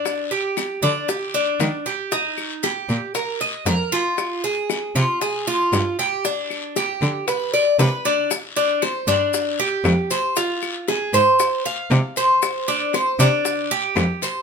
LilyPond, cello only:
\new Staff \with { instrumentName = "Cello" } { \clef bass \time 4/4 \key c \minor \tempo 4 = 116 r4. d4. ees4~ | ees4. bes,4. f,4~ | f,4. c4. g,4~ | g,4. d4. c4~ |
c4. g,4. f,4~ | f,4. aes,4. c4~ | c4. c4. f,4 | }